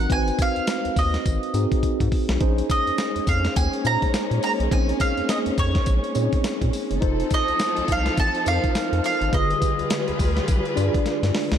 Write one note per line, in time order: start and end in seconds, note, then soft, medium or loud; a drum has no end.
0.00 0.09 C4 medium
0.00 0.09 D#4 medium
0.00 0.10 F#4 medium
0.00 2.42 A#4 medium
0.00 0.12 F#5 loud
0.09 0.31 G#1 loud
0.09 1.18 C4 medium
0.09 1.18 D#4 medium
0.09 1.18 F#4 medium
0.09 0.18 B4 medium
0.09 0.40 G#5 loud
0.09 kick loud
0.09 closed hi-hat medium
0.17 1.22 C5 medium
0.28 closed hi-hat medium
0.39 1.00 F5 loud
0.39 kick loud
0.39 closed hi-hat medium
0.39 tambourine medium
0.56 0.61 D#2 soft
0.56 closed hi-hat soft
0.67 snare loud
0.67 closed hi-hat medium
0.67 tambourine loud
0.85 0.90 D#2 medium
0.85 closed hi-hat medium
0.96 1.17 D#2 medium
0.96 2.09 D#5 medium
0.96 kick loud
0.96 open hi-hat medium
0.96 tambourine medium
1.14 snare medium
1.14 closed hi-hat medium
1.26 1.38 G#1 medium
1.26 kick loud
1.26 closed hi-hat medium
1.26 tambourine medium
1.43 closed hi-hat soft
1.54 1.66 G#2 loud
1.54 2.35 C4 medium
1.54 2.35 D#4 medium
1.54 2.36 F#4 medium
1.54 2.36 G#4 medium
1.54 closed hi-hat medium
1.54 tambourine medium
1.72 kick medium
1.72 closed hi-hat soft
1.83 kick medium
1.83 closed hi-hat medium
2.00 2.09 G#2 loud
2.00 kick medium
2.00 closed hi-hat medium
2.12 kick loud
2.12 open hi-hat medium
2.29 2.37 B1 loud
2.29 snare loud
2.29 closed hi-hat medium
2.40 2.62 A#1 loud
2.40 6.98 G#3 medium
2.40 6.98 A#3 medium
2.40 3.49 C#4 loud
2.40 6.98 C#4 loud
2.40 3.49 D#4 medium
2.40 3.49 G#4 medium
2.40 3.50 C5 loud
2.40 kick loud
2.40 closed hi-hat medium
2.58 closed hi-hat medium
2.70 3.29 D#5 loud
2.70 kick loud
2.70 closed hi-hat medium
2.70 tambourine medium
2.87 2.91 F2 medium
2.87 closed hi-hat soft
2.98 snare loud
2.98 closed hi-hat medium
2.98 tambourine loud
3.16 3.20 F2 medium
3.16 closed hi-hat medium
3.27 3.48 F2 loud
3.27 3.56 F5 loud
3.27 kick loud
3.27 closed hi-hat medium
3.27 tambourine medium
3.45 snare medium
3.45 closed hi-hat medium
3.56 3.69 D#2 loud
3.56 3.86 G#5 loud
3.56 kick loud
3.56 closed hi-hat medium
3.56 tambourine medium
3.73 closed hi-hat soft
3.84 3.97 A#2 loud
3.84 4.66 C#4 medium
3.84 4.66 D#4 medium
3.84 4.66 G#4 medium
3.84 4.66 C5 medium
3.84 4.39 A#5 loud
3.84 closed hi-hat medium
3.84 tambourine medium
4.02 kick medium
4.02 closed hi-hat medium
4.14 snare loud
4.14 closed hi-hat medium
4.14 tambourine loud
4.31 4.39 A#2 medium
4.31 closed hi-hat medium
4.43 4.51 A#5 loud
4.43 open hi-hat medium
4.43 tambourine medium
4.60 4.68 B1 medium
4.60 closed hi-hat medium
4.70 4.92 A#1 loud
4.70 4.79 C4 medium
4.70 5.80 D#4 medium
4.70 5.80 G#4 medium
4.70 5.80 C5 medium
4.70 4.99 G#5 loud
4.70 kick loud
4.70 closed hi-hat medium
4.77 5.83 C#4 medium
4.89 closed hi-hat medium
5.00 5.30 F5 loud
5.00 kick medium
5.00 closed hi-hat medium
5.00 tambourine medium
5.17 5.22 F2 soft
5.17 closed hi-hat soft
5.29 5.37 D#5 medium
5.29 snare loud
5.29 closed hi-hat medium
5.29 tambourine medium
5.46 5.51 F2 soft
5.46 closed hi-hat medium
5.58 5.79 F2 loud
5.58 6.70 C#5 medium
5.58 kick medium
5.58 closed hi-hat medium
5.58 tambourine medium
5.75 kick medium
5.75 snare medium
5.75 closed hi-hat medium
5.86 5.99 A#1 loud
5.86 kick loud
5.86 closed hi-hat medium
5.86 tambourine medium
6.04 closed hi-hat soft
6.15 6.28 A#2 loud
6.15 6.23 C4 medium
6.15 6.97 D#4 medium
6.15 6.97 G#4 medium
6.15 6.97 C#5 medium
6.15 closed hi-hat medium
6.15 tambourine medium
6.21 7.00 C#4 medium
6.33 kick medium
6.33 closed hi-hat medium
6.44 snare loud
6.44 closed hi-hat medium
6.44 tambourine medium
6.62 6.70 A#2 loud
6.62 kick medium
6.62 closed hi-hat medium
6.73 open hi-hat medium
6.73 tambourine medium
6.91 6.99 F#1 medium
6.91 closed hi-hat medium
7.01 7.23 F1 loud
7.01 9.30 F3 medium
7.01 9.30 C4 medium
7.01 8.10 D#4 medium
7.01 9.30 D#4 medium
7.01 8.10 F4 medium
7.01 8.10 A4 medium
7.01 9.30 A4 medium
7.01 8.11 C5 loud
7.01 kick loud
7.01 closed hi-hat medium
7.20 closed hi-hat medium
7.30 7.92 D#5 loud
7.30 kick medium
7.30 closed hi-hat medium
7.30 tambourine medium
7.48 7.53 C2 medium
7.48 closed hi-hat soft
7.59 snare loud
7.59 closed hi-hat medium
7.59 tambourine loud
7.77 7.82 C2 medium
7.77 closed hi-hat medium
7.88 8.10 C2 medium
7.88 kick medium
7.88 closed hi-hat medium
7.88 tambourine medium
7.92 8.19 F5 loud
8.06 snare medium
8.06 closed hi-hat medium
8.17 8.30 A1 loud
8.17 8.47 A5 loud
8.17 kick loud
8.17 closed hi-hat medium
8.17 tambourine medium
8.35 closed hi-hat soft
8.45 8.59 F2 loud
8.45 9.27 D#4 medium
8.45 9.27 F4 medium
8.45 9.28 A4 medium
8.45 8.54 A#4 medium
8.45 9.04 F5 loud
8.45 closed hi-hat medium
8.45 tambourine medium
8.53 9.31 C5 medium
8.64 kick medium
8.64 closed hi-hat soft
8.75 snare loud
8.75 closed hi-hat medium
8.75 tambourine medium
8.92 9.01 F2 loud
8.92 closed hi-hat medium
9.04 9.34 F5 medium
9.04 open hi-hat medium
9.04 tambourine medium
9.21 9.30 G#1 medium
9.21 closed hi-hat medium
9.32 9.54 G1 loud
9.32 10.41 D3 medium
9.32 11.58 G3 medium
9.32 10.41 F4 medium
9.32 11.58 F4 medium
9.32 10.41 G#4 medium
9.32 11.58 G#4 medium
9.32 10.41 B4 medium
9.32 11.58 B4 loud
9.32 11.03 D#5 medium
9.32 kick loud
9.32 closed hi-hat medium
9.51 closed hi-hat medium
9.62 kick medium
9.62 closed hi-hat medium
9.62 tambourine medium
9.79 9.84 D2 medium
9.79 closed hi-hat soft
9.90 snare loud
9.90 closed hi-hat medium
9.90 tambourine loud
10.08 10.13 D2 soft
10.08 closed hi-hat medium
10.19 10.40 D2 medium
10.19 kick medium
10.19 open hi-hat medium
10.19 tambourine medium
10.37 snare medium
10.37 closed hi-hat medium
10.48 10.61 B1 loud
10.48 kick loud
10.48 closed hi-hat medium
10.48 tambourine medium
10.65 closed hi-hat soft
10.76 10.90 G2 loud
10.76 11.58 D4 medium
10.76 11.58 F4 medium
10.76 11.58 G#4 medium
10.76 11.58 D5 loud
10.76 closed hi-hat medium
10.76 tambourine medium
10.94 kick medium
10.94 closed hi-hat medium
11.06 snare medium
11.06 closed hi-hat medium
11.23 11.31 G2 medium
11.23 snare medium
11.23 closed hi-hat medium
11.35 snare medium
11.35 open hi-hat medium
11.52 11.58 C#2 medium
11.52 snare medium
11.52 closed hi-hat medium